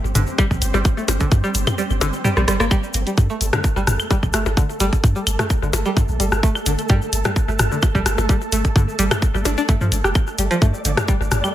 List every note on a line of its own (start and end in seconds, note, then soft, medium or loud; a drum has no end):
0.00 2.72 G3 medium
0.00 2.74 C4 medium
0.04 0.13 G1 medium
0.04 shaker soft
0.15 0.25 G1 medium
0.15 0.22 D3 medium
0.15 closed hi-hat medium
0.15 mid tom medium
0.15 shaker medium
0.27 shaker soft
0.38 0.43 G3 loud
0.38 kick loud
0.38 percussion blips soft
0.38 claves medium
0.38 shaker soft
0.51 0.60 A#1 medium
0.51 kick medium
0.51 shaker soft
0.62 0.72 G1 medium
0.62 closed hi-hat medium
0.62 shaker medium
0.74 0.83 G1 medium
0.74 0.78 G3 medium
0.74 percussion blips soft
0.74 shaker soft
0.85 kick loud
0.85 shaker soft
0.97 1.01 A3 medium
0.97 shaker soft
1.08 1.18 G1 loud
1.08 closed hi-hat medium
1.08 percussion blips medium
1.08 shaker medium
1.20 1.26 D3 medium
1.20 kick medium
1.20 closed hi-hat soft
1.20 shaker soft
1.32 1.42 G2 medium
1.32 kick loud
1.32 shaker soft
1.44 1.48 G3 loud
1.44 shaker soft
1.54 1.65 G1 medium
1.54 closed hi-hat medium
1.54 shaker medium
1.67 closed hi-hat soft
1.67 mid tom medium
1.67 percussion blips soft
1.67 claves medium
1.67 shaker soft
1.78 1.82 G3 medium
1.78 shaker soft
1.90 1.99 G1 medium
1.90 shaker soft
2.01 2.11 G1 medium
2.01 2.06 D3 loud
2.01 closed hi-hat medium
2.01 percussion blips medium
2.01 shaker medium
2.13 shaker soft
2.25 2.29 G3 loud
2.25 mid tom medium
2.25 shaker medium
2.37 2.46 A#1 medium
2.37 2.39 G3 loud
2.37 cross-stick soft
2.37 shaker soft
2.48 2.58 G1 medium
2.48 2.54 G3 loud
2.48 cross-stick medium
2.48 closed hi-hat medium
2.48 shaker medium
2.60 2.69 G1 medium
2.60 2.64 A#3 loud
2.60 cross-stick medium
2.60 shaker soft
2.71 2.75 G3 loud
2.71 11.55 A3 medium
2.71 10.18 A4 medium
2.71 kick loud
2.71 claves medium
2.71 shaker soft
2.83 shaker soft
2.94 3.04 G1 medium
2.94 closed hi-hat medium
2.94 shaker medium
3.07 3.10 G3 medium
3.07 closed hi-hat soft
3.07 shaker soft
3.17 3.28 G2 medium
3.17 kick loud
3.17 shaker soft
3.30 3.34 A3 medium
3.30 shaker soft
3.41 3.51 G1 medium
3.41 closed hi-hat medium
3.41 shaker medium
3.53 3.59 D3 medium
3.53 cross-stick medium
3.53 closed hi-hat soft
3.53 mid tom medium
3.53 percussion blips medium
3.53 shaker soft
3.64 kick loud
3.64 shaker medium
3.76 3.85 G1 medium
3.76 3.80 G3 medium
3.76 shaker soft
3.87 3.97 G1 medium
3.87 cross-stick medium
3.87 closed hi-hat medium
3.87 mid tom medium
3.87 shaker medium
3.99 claves medium
3.99 shaker soft
4.11 4.15 G3 medium
4.11 kick loud
4.11 percussion blips medium
4.11 shaker soft
4.23 4.32 A#1 medium
4.23 kick medium
4.23 shaker soft
4.33 4.44 G1 medium
4.33 4.38 A3 medium
4.33 cross-stick medium
4.33 closed hi-hat medium
4.33 shaker medium
4.46 4.55 G1 medium
4.46 percussion blips soft
4.46 shaker soft
4.57 4.63 D3 medium
4.57 kick loud
4.57 shaker medium
4.70 shaker soft
4.80 4.90 G1 medium
4.80 4.85 G3 loud
4.80 closed hi-hat medium
4.80 shaker medium
4.93 kick medium
4.93 closed hi-hat soft
4.93 shaker soft
5.04 5.14 G2 medium
5.04 kick loud
5.04 shaker medium
5.16 5.20 G3 medium
5.16 shaker soft
5.27 5.37 G1 medium
5.27 closed hi-hat medium
5.27 claves medium
5.27 shaker medium
5.39 5.43 A3 medium
5.39 cross-stick medium
5.39 closed hi-hat soft
5.39 mid tom medium
5.39 percussion blips medium
5.39 shaker soft
5.50 kick loud
5.50 shaker medium
5.62 5.71 G1 medium
5.62 5.68 D3 medium
5.62 shaker soft
5.73 5.83 G1 medium
5.73 closed hi-hat medium
5.73 percussion blips medium
5.73 shaker medium
5.85 5.89 G3 loud
5.85 shaker soft
5.97 kick loud
5.97 mid tom medium
5.97 shaker medium
6.08 6.18 A#1 medium
6.08 shaker soft
6.20 6.30 G1 medium
6.20 6.24 G3 medium
6.20 closed hi-hat medium
6.20 shaker medium
6.32 6.41 G1 medium
6.32 cross-stick medium
6.32 shaker soft
6.43 6.47 A3 medium
6.43 kick loud
6.43 shaker medium
6.55 claves medium
6.55 shaker soft
6.66 6.76 G1 medium
6.66 6.73 D3 medium
6.66 closed hi-hat medium
6.66 shaker loud
6.78 closed hi-hat soft
6.78 shaker soft
6.89 7.00 G2 medium
6.89 6.94 G3 medium
6.89 kick loud
6.89 shaker medium
7.02 shaker soft
7.13 7.23 G1 medium
7.13 closed hi-hat medium
7.13 shaker medium
7.25 7.29 G3 medium
7.25 cross-stick medium
7.25 closed hi-hat soft
7.25 mid tom medium
7.25 percussion blips medium
7.25 shaker soft
7.36 kick loud
7.36 shaker medium
7.48 7.57 G1 loud
7.48 7.52 A3 medium
7.48 shaker soft
7.59 7.69 G1 medium
7.59 cross-stick medium
7.59 closed hi-hat medium
7.59 mid tom medium
7.59 shaker medium
7.71 7.77 D3 medium
7.71 shaker soft
7.82 kick loud
7.82 percussion blips medium
7.82 claves medium
7.82 shaker medium
7.95 8.04 A#1 medium
7.95 7.99 G3 loud
7.95 kick medium
7.95 shaker soft
8.06 8.16 G1 medium
8.06 cross-stick medium
8.06 closed hi-hat medium
8.06 shaker medium
8.18 8.27 G1 loud
8.18 percussion blips medium
8.18 shaker soft
8.29 8.33 G3 medium
8.29 kick loud
8.29 shaker soft
8.41 shaker soft
8.52 8.62 G1 medium
8.52 8.57 A3 medium
8.52 closed hi-hat medium
8.52 shaker loud
8.65 kick medium
8.65 closed hi-hat soft
8.65 shaker soft
8.76 8.86 G2 medium
8.76 8.82 D3 medium
8.76 kick loud
8.76 shaker medium
8.89 shaker soft
8.99 9.09 G1 medium
8.99 9.03 G3 loud
8.99 closed hi-hat medium
8.99 shaker medium
9.11 cross-stick medium
9.11 closed hi-hat soft
9.11 mid tom medium
9.11 percussion blips medium
9.11 claves medium
9.11 shaker soft
9.22 kick loud
9.22 shaker soft
9.34 9.43 G1 medium
9.34 9.38 G3 medium
9.34 shaker soft
9.45 9.56 G1 medium
9.45 9.52 D4 medium
9.45 closed hi-hat medium
9.45 percussion blips medium
9.45 shaker loud
9.58 9.62 D4 loud
9.58 shaker soft
9.69 9.73 A3 medium
9.69 kick loud
9.69 mid tom medium
9.69 shaker soft
9.81 9.90 G2 medium
9.81 9.85 F3 medium
9.81 shaker soft
9.92 10.02 G1 medium
9.92 closed hi-hat medium
9.92 shaker medium
10.04 10.13 F1 medium
10.04 10.07 G4 medium
10.04 cross-stick medium
10.04 shaker soft
10.15 11.55 D5 medium
10.15 kick loud
10.15 claves medium
10.15 shaker soft
10.27 shaker soft
10.38 10.49 G1 medium
10.38 10.43 G3 medium
10.38 closed hi-hat medium
10.38 shaker medium
10.51 10.55 F3 loud
10.51 closed hi-hat soft
10.51 shaker soft
10.62 10.72 G2 medium
10.62 10.66 A3 medium
10.62 kick loud
10.62 shaker medium
10.74 shaker soft
10.85 10.95 G1 medium
10.85 10.91 D3 medium
10.85 closed hi-hat medium
10.85 shaker medium
10.97 cross-stick medium
10.97 closed hi-hat soft
10.97 mid tom medium
10.97 percussion blips medium
10.97 shaker soft
11.08 11.12 G3 loud
11.08 kick loud
11.08 shaker medium
11.21 11.30 G1 medium
11.21 shaker soft
11.31 11.42 G1 medium
11.31 cross-stick medium
11.31 closed hi-hat medium
11.31 mid tom medium
11.31 shaker medium
11.44 11.48 G3 medium
11.44 claves medium
11.44 shaker soft